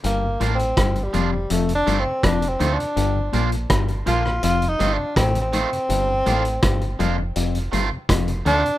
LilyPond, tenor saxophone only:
\new Staff \with { instrumentName = "Tenor saxophone" } { \time 4/4 \key g \minor \tempo 4 = 82 \tuplet 3/2 { bes4 c'8~ c'8 g4 a8 d'8 c'8 d'8 c'8 d'8~ } | d'8 r4 f'8 \tuplet 3/2 { f'8 ees'8 d'8 c'8 c'4~ } | c'2 r4. d'8 | }